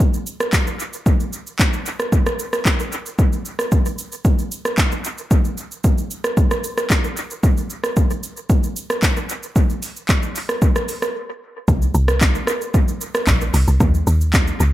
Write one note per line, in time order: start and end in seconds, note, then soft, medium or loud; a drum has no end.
0.00 kick loud
0.00 shaker medium
0.14 shaker medium
0.27 shaker loud
0.40 cross-stick medium
0.40 shaker medium
0.53 kick medium
0.53 clap loud
0.53 shaker medium
0.67 shaker medium
0.80 shaker medium
0.93 shaker medium
1.06 kick loud
1.06 shaker medium
1.20 shaker soft
1.33 shaker medium
1.47 shaker medium
1.59 kick loud
1.59 clap loud
1.59 shaker medium
1.73 shaker medium
1.86 shaker medium
2.00 cross-stick medium
2.00 shaker medium
2.12 kick loud
2.12 shaker medium
2.26 cross-stick medium
2.26 shaker medium
2.39 shaker loud
2.53 cross-stick medium
2.53 shaker medium
2.65 kick medium
2.65 clap medium
2.65 shaker medium
2.80 shaker medium
2.92 shaker medium
3.06 shaker medium
3.19 kick loud
3.19 shaker medium
3.33 shaker soft
3.45 shaker medium
3.59 cross-stick medium
3.59 shaker medium
3.72 kick loud
3.72 shaker medium
3.86 shaker medium
3.98 shaker medium
4.12 shaker medium
4.25 kick loud
4.25 shaker medium
4.39 shaker medium
4.52 shaker medium
4.65 cross-stick medium
4.65 shaker medium
4.78 kick medium
4.78 clap medium
4.78 shaker medium
4.92 shaker medium
5.04 shaker medium
5.18 shaker medium
5.31 kick loud
5.31 shaker medium
5.45 shaker soft
5.57 shaker medium
5.71 shaker medium
5.84 kick loud
5.84 shaker medium
5.98 shaker medium
6.11 shaker medium
6.24 cross-stick medium
6.24 shaker medium
6.37 kick loud
6.37 shaker medium
6.51 cross-stick medium
6.51 shaker medium
6.64 shaker medium
6.78 cross-stick medium
6.78 shaker medium
6.90 kick medium
6.90 clap loud
6.90 shaker medium
7.04 shaker medium
7.17 shaker medium
7.30 shaker medium
7.43 kick loud
7.43 shaker medium
7.57 shaker soft
7.70 shaker medium
7.84 cross-stick medium
7.84 shaker medium
7.96 kick loud
7.96 shaker medium
8.10 shaker medium
8.23 shaker medium
8.37 shaker medium
8.50 kick loud
8.50 shaker medium
8.63 shaker medium
8.76 shaker loud
8.90 cross-stick medium
8.90 shaker medium
9.03 kick medium
9.03 clap loud
9.03 shaker medium
9.17 shaker medium
9.29 shaker medium
9.43 shaker medium
9.56 kick loud
9.56 shaker medium
9.70 shaker soft
9.82 open hi-hat soft
9.82 shaker medium
9.96 shaker medium
10.09 kick loud
10.09 clap loud
10.09 shaker medium
10.23 shaker medium
10.36 open hi-hat medium
10.36 shaker medium
10.49 cross-stick medium
10.49 shaker medium
10.62 kick loud
10.62 shaker medium
10.76 cross-stick medium
10.76 shaker medium
10.88 open hi-hat medium
10.88 shaker loud
11.02 cross-stick medium
11.02 shaker medium
11.68 11.91 C2 loud
11.68 kick loud
11.68 shaker medium
11.82 shaker soft
11.94 12.40 C2 loud
11.94 shaker medium
12.08 cross-stick loud
12.08 shaker medium
12.21 kick loud
12.21 clap loud
12.21 shaker medium
12.35 shaker medium
12.47 cross-stick loud
12.47 shaker medium
12.61 shaker medium
12.74 kick loud
12.74 shaker medium
12.88 shaker medium
13.01 shaker loud
13.15 cross-stick loud
13.15 shaker medium
13.27 13.50 A#1 loud
13.27 kick loud
13.27 clap loud
13.27 shaker medium
13.41 shaker medium
13.54 13.66 C2 loud
13.54 open hi-hat medium
13.54 shaker medium
13.67 13.79 C2 medium
13.67 shaker medium
13.80 14.03 D#2 loud
13.80 kick loud
13.80 shaker medium
13.94 shaker soft
14.07 14.53 D#2 loud
14.07 shaker medium
14.21 shaker medium
14.33 kick loud
14.33 clap loud
14.33 shaker medium
14.47 shaker medium
14.60 14.73 C#2 loud
14.60 shaker medium